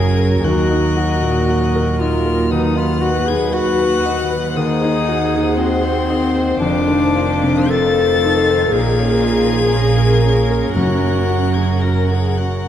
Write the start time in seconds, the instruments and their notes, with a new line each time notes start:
Already playing: double bass section F#1, cello section F#2, grand piano F#2 C#3 C#4 F#4 A#4, viola section F#3, french horn section G#4, clarinet G#4, violin section A#4 C#5, violin G#6
0.18 grand piano A#4
0.42 cello section D#2, double bass section D#2, grand piano D#2, french horn section F#4, clarinet F#4, violin section D#5, violin F#6
0.71 grand piano D#4
0.97 grand piano F#4
1.22 grand piano A#2
1.49 grand piano F#4
1.75 grand piano A#4
1.99 grand piano D#4, french horn section F4, clarinet F4, violin F6
2.26 grand piano A#4
2.50 grand piano D#2, french horn section D#4, clarinet D#4, violin section B4 F#5, violin D#6
2.76 grand piano D#4, french horn section F4, clarinet F4, violin F6
3.00 grand piano F#4, clarinet F#4, french horn section F#4, violin F#6
3.26 grand piano D#3, french horn section G#4, clarinet G#4, violin G#6
3.53 grand piano F#4, clarinet F#4, french horn section F#4, violin F#6
3.79 grand piano B4
4.05 grand piano D#4
4.31 grand piano B4
4.54 grand piano D#2, clarinet D#4, french horn section D#4, viola section G#4, violin section C5, violin D#6
4.83 grand piano D#4
5.08 grand piano F#4
5.35 grand piano D#3
5.57 french horn section C4, clarinet C4, grand piano F#4, violin C6
5.85 grand piano C5
6.10 grand piano D#4
6.36 grand piano C5
6.59 double bass section F1, cello section F2, grand piano F2, viola section D#3, french horn section D4, clarinet D4, violin section F5, violin D6
6.88 grand piano D#3
7.15 grand piano F4
7.43 grand piano C3
7.67 grand piano F4, french horn section A4, clarinet A4, violin A6
7.96 grand piano C5
8.24 grand piano D#4
8.50 grand piano C5
8.69 double bass section A#1, cello section A#2, french horn section G#4, clarinet G#4, violin section A#4, violin G#6
8.74 grand piano A#2
8.99 grand piano C#4
9.23 grand piano F4
9.48 grand piano F3
9.72 viola section C#4, grand piano F4
9.98 grand piano A#4
10.24 grand piano C#4
10.51 grand piano A#4
10.73 double bass section F#1, cello section F#2, timpani F#2, grand piano F#2, french horn section F#4, clarinet F#4, violin section F#5, violin F#6
11.03 grand piano C#4
11.30 grand piano F#4
11.54 grand piano C#3, clarinet G#4, french horn section G#4, violin G#6
11.81 grand piano F#4, clarinet A#4, french horn section A#4, violin A#6
12.10 clarinet G#4, grand piano A#4, violin G#6
12.15 french horn section G#4
12.38 grand piano C#4, french horn section F#4, clarinet F#4, violin F#6